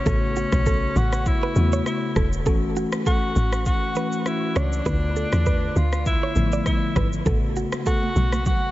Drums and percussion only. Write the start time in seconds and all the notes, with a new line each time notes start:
0.06 kick, shaker
0.36 shaker
0.52 kick, cross-stick, shaker
0.66 kick, shaker
0.96 shaker
1.13 cross-stick, shaker
1.26 kick, shaker
1.56 shaker
1.73 shaker
1.86 cross-stick, shaker
2.16 kick, cross-stick, shaker
2.33 shaker
2.46 kick, shaker
2.76 shaker
2.92 cross-stick, shaker
3.06 kick, shaker
3.36 shaker
3.53 cross-stick, shaker
3.66 kick, shaker
3.95 shaker
4.12 shaker
4.26 cross-stick, shaker
4.56 cross-stick, shaker
4.73 shaker
4.86 kick, shaker
5.16 shaker
5.32 cross-stick, shaker
5.46 kick, shaker
5.76 shaker
5.93 cross-stick, shaker
6.06 kick, shaker
6.36 shaker
6.52 shaker
6.66 kick, cross-stick, shaker
6.96 kick, cross-stick, shaker
7.13 shaker
7.26 kick, shaker
7.56 shaker
7.72 cross-stick, high conga, shaker
7.86 kick, shaker
8.03 high conga
8.16 low conga, shaker
8.32 cross-stick, high conga, shaker
8.46 kick, low conga, shaker